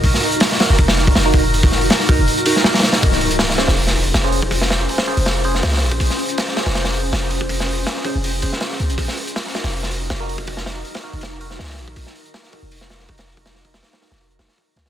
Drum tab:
HH |o---o-x-o---o---o-o---o-o---o---|o-o---o-o---o---o-x-o---o-ooo-o-|o---o-x-o---o-o-o---o---o---o---|o---o---o-o---o-o---o---ooooo---|
SD |--o-----o-o-o-o---o-o---o-------|----o---o-o-----------o-o-ooo-o-|--o-----o-o-o-o---o-----o-------|--o-o-----o-----o-----o-ooooo---|
BD |o---------------o-----o-----o---|--o---------o-------------------|o-----------------------------o-|o-----------------------------o-|

HH |o---o-x-o---o-o-o-o-o---o---o---|o---o---o---o---o---o---o---o-x-|o---o-x-o---o-o-o---o---o---o---|o---o---o-o---o-o---o---ooooo---|
SD |--o-----o-o-o-o-o-o-----o-------|--o-----o-o-----------o-o-o-----|--o-----o-o-o-o---o-----o-------|--o-o-----o-----o-----o-ooooo---|
BD |o-----------------------------o-|o-----------o-------------------|o-----------------------------o-|o-----------------------------o-|

HH |o---o-x-o---o---o---o---o-o---o-|o---o-o-o-o-o-o-o-x-ooo-o---o-o-|
SD |--o-----o-o-------o-o-o---o-o---|o-o---o-o-o-o-o-----ooo-----o-o-|
BD |o-----------o-----------o-----o-|----o-------------------o-------|